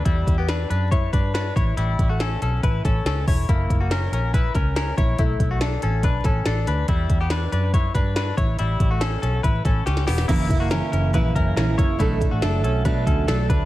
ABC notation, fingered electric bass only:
X:1
M:4/4
L:1/16
Q:1/4=141
K:Bm
V:1 name="Fingered electric bass" clef=bass
E,,2 E,,4 F,,4 G,,4 A,,,2 | A,,,2 A,,,4 B,,,2 A,,,2 A,,,2 C,,2 E,,,2 | F,,,2 F,,,4 ^A,,,4 C,,4 A,,,2 | B,,,2 B,,,4 A,,,2 B,,,2 A,,,2 A,,,2 D,,2 |
E,,2 E,,4 F,,4 G,,4 A,,,2 | A,,,2 A,,,4 B,,,2 A,,,2 A,,,2 C,,2 E,,,2 | F,,,4- F,,, z F,,,2 ^A,,,2 F,,,2 A,,,2 F,,,2 | B,,,3 A,,, F,,,2 B,,,2 B,,2 D,,2 B,,,2 D,,2 |]